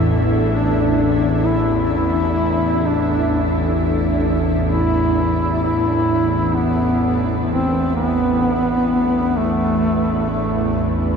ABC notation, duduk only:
X:1
M:4/4
L:1/16
Q:1/4=65
K:C
V:1 name="Duduk"
z2 D4 E2 E4 D3 z | z4 E4 E4 B,3 z | C2 B,6 A,4 A,3 z |]